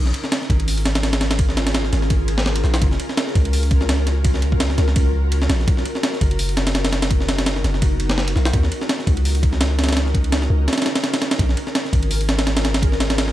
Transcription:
Already playing: A#1 C#4 F4 G#4 A#4
0.06 snare
0.14 ride
0.24 snare
0.32 snare, ride
0.42 snare
0.50 G#1, kick, ride
0.60 ride
0.68 open hi-hat
0.78 ride
0.85 snare, ride
0.95 snare, ride
1.03 snare, ride
1.13 snare, ride
1.21 snare, ride
1.31 snare, ride
1.39 kick, ride
1.49 snare
1.57 snare, ride
1.67 snare, ride
1.75 snare, ride
1.85 snare
1.93 G#1, snare, ride
2.02 snare
2.10 kick, ride
2.28 ride
2.38 snare
2.46 snare
2.56 ride
2.64 A#1, snare
2.74 snare
2.81 F#1 C#4 F4 F#4, kick, ride
2.91 snare
3.00 ride
3.09 snare
3.17 snare, ride
3.27 snare
3.35 C#2, kick, ride
3.45 ride
3.53 open hi-hat
3.63 ride
3.71 kick, ride
3.81 snare
3.89 snare, ride
4.07 snare, ride
4.24 kick, ride
4.34 snare
4.42 ride
4.52 kick
4.60 snare, ride
4.70 snare
4.78 C#2, snare, ride
4.88 snare
4.96 kick, ride
5.32 ride
5.42 snare
5.50 A#1, snare, ride
5.60 snare
5.68 B1 B3 D#4, kick, ride
5.77 snare
5.85 ride
5.95 snare
6.03 snare, ride
6.13 snare
6.21 F#1, kick, ride
6.31 ride
6.39 open hi-hat
6.49 ride
6.57 snare, ride
6.67 snare, ride
6.75 snare, ride
6.85 snare, ride
6.93 snare, ride
7.02 snare, ride
7.11 kick, ride
7.21 snare
7.29 snare, ride
7.38 snare, ride
7.46 snare, ride
7.56 snare
7.64 F#1, snare, ride
7.74 snare
7.82 kick, ride
8.00 ride
8.10 snare
8.18 snare
8.28 ride
8.36 B1, snare
8.45 snare
8.53 D#2 C#4 D#4 A#4, kick, ride
8.63 snare
8.72 ride
8.82 snare
8.89 snare, ride
8.99 snare
9.07 C#2, kick, ride
9.17 ride
9.25 open hi-hat
9.35 ride
9.43 kick, ride
9.53 snare
9.61 snare, ride
9.79 snare, ride
9.84 snare, ride
9.89 snare, ride
9.93 snare, ride
9.97 snare, ride
10.06 snare
10.14 kick, ride
10.24 ride
10.32 snare, ride
10.42 snare
10.50 C#2
10.68 snare, ride
10.73 snare, ride
10.78 snare, ride
10.82 snare, ride
10.86 snare, ride
10.95 snare, ride
11.04 snare, ride
11.14 snare, ride
11.22 snare, ride
11.31 snare, ride
11.39 A#1 F4 G#4, kick, ride
11.49 snare
11.57 ride
11.67 snare
11.75 snare, ride
11.85 snare
11.93 G#1, kick, ride
12.03 ride
12.11 open hi-hat
12.21 ride
12.29 snare, ride
12.39 snare, ride
12.47 snare, ride
12.57 snare, ride
12.65 snare, ride
12.74 snare, ride
12.82 kick, ride
12.92 snare
13.00 snare, ride
13.10 snare, ride
13.18 snare, ride
13.28 snare

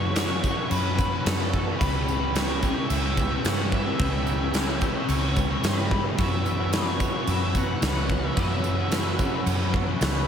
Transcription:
Already playing: F#2 C#3 E3 C#4 C#5 F#5 B5 E6
0.02 C#3 E3 F#3 B3 C#4 F#4
0.15 F#2 C#3 E3 F#3 B3 C#4 F#4, snare, tambourine, crash
0.43 F#2 C#3 E3 F#3 B3 C#4, kick, tambourine
0.47 F#4
0.57 muted clean electric guitar stroke, muted distorted electric guitar stroke
0.71 F#2 B4, tambourine, crash
0.84 C#3 F#3
0.98 E3 B3 C#4 F#4, muted distorted electric guitar stroke, kick, tambourine
1.11 C#3 F#3, muted clean electric guitar stroke
1.25 F#2 C#3 E3 F#3 B3 C#4 F#4 A4, snare, tambourine, crash
1.39 E3 B3 C#4 F#4
1.53 F#2 C#3 E3 F#3 B3 C#4 F#4, kick, tambourine
1.66 C#3 E3 F#3 B3 C#4 F#4
1.79 C#2 C#3 E3 G#3 B3 C#4 G4 B4 C#5 G5, kick, crash
1.83 C#4
2.08 tambourine
2.20 G#3 B3 C#4 G4
2.34 C#3 E3 G#3 B3 C#4 G4 C#5, snare, tambourine, crash
2.61 C#3 E3 G#3 B3 C#4 G4, kick, tambourine
2.76 muted distorted electric guitar stroke, muted clean electric guitar stroke
2.90 C#2 E5, tambourine, crash
3.03 G#3 C#4
3.16 E3 B3 C#4 G4, muted distorted electric guitar stroke, kick, tambourine
3.30 G#3 C#4, muted clean electric guitar stroke
3.43 G2 C#3 E3 G#3 B3 C#4 G4 F#5, snare, tambourine, crash
3.58 B3 C#4 G4
3.71 C#3 E3 G#3 B3 C#4 G4 E5, kick, tambourine
3.85 G#3 B3 C#4 G4
3.99 C#2 C#3 E3 G#3 B3 C#4 G4, kick, tambourine, crash
4.27 tambourine
4.39 G#3 C#4 G4
4.43 B3
4.53 C#3 E3 G#3 B3 C#4 G4, snare, tambourine, crash
4.81 C#3 E3 G#3 B3 C#4 G4, kick, tambourine
4.95 muted clean electric guitar stroke, muted distorted electric guitar stroke
5.08 C#2 C#5, tambourine, crash
5.22 G#3 C#4
5.35 E3 B3 C#4 G4, muted distorted electric guitar stroke, kick, tambourine
5.49 G#3 C#4, muted clean electric guitar stroke
5.63 G2 C#3 E3 G#3 B3 C#4 G4 B4, snare, tambourine, crash
5.67 C#4
5.76 B3 C#4 G4
5.90 C#3 E3 G#3 B3 C#4 G4, kick
6.03 G#3 B3 C#4 G4
6.17 F#2 C#3 E3 F#3 B3 C#4 F#4 E5 F#5, kick, crash
6.45 E3, tambourine
6.58 C#3 E3 F#3 B3 C#4 F#4
6.72 F#2 C#3 E3 F#3 B3 C#4 F#4 C#5, snare, tambourine, crash
6.99 F#2 C#3 E3 F#3 B3 C#4 F#4, kick, tambourine
7.13 muted clean electric guitar stroke, muted distorted electric guitar stroke
7.27 F#2 B3 E5, tambourine, crash
7.41 C#3 F#3
7.54 E3 B3 C#4 F#4 F#5, muted distorted electric guitar stroke, kick, tambourine
7.68 C#3 F#3, muted clean electric guitar stroke
7.81 C#2 F#2 C#3 E3 F#3 B3 C#4 F#4 F#5, snare, tambourine, crash
7.95 E3 B3 C#4 F#4
8.08 F#2 C#3 E3 B3 C#4 F#4, kick, tambourine
8.13 F#3
8.22 C#3 E3 F#3 B3 C#4 F#4
8.27 E5
8.36 F#2 C#3 E3 B3 C#4 F#4 E5, kick, crash
8.40 F#3
8.64 E3, tambourine
8.77 C#3 E3 F#3 B3 C#4 F#4
8.90 F#2 C#3 E3 F#3 B3 C#4 F#4, snare, tambourine, crash
9.17 F#2 E3 B3 C#4 F#4, kick, tambourine
9.21 C#3 F#3
9.32 muted clean electric guitar stroke, muted distorted electric guitar stroke
9.46 F#2 B3, tambourine, crash
9.60 C#3 F#3
9.72 E3 B3 C#4 F#4, muted distorted electric guitar stroke, kick
9.86 C#3 F#3, muted clean electric guitar stroke
9.98 C#2 F#2 C#3 E3 F#3 B3 C#4 F#4, tambourine, crash
10.02 snare
10.12 E3 B3 C#4 F#4

